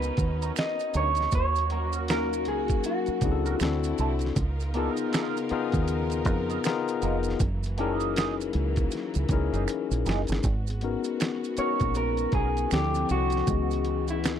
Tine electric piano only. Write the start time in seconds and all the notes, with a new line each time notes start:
Already playing: B3 C#4 D#4 F#4 A#4
2.10 A#3 C#4 D#4 F#4 A#4
3.23 C4 D4 E4 F#4 G#4
3.32 A4
3.61 C4 D4 E4 F#4 A4
4.75 B3 D#4 F4 G#4 A#4
5.51 B3 D#4 F4 G#4 A#4
6.65 B3 D#4 F4 G#4 A#4
7.79 C#4 D#4 E4 G#4 A#4
9.31 C#4 D#4 E4 G#4 A#4
10.82 B3 C#4 D#4 F#4 A#4
11.58 B3 C#4 D#4 F#4 A#4
12.72 F3 C4 D4 E4 A4
13.48 E3 B3 C#4 G#4 D#5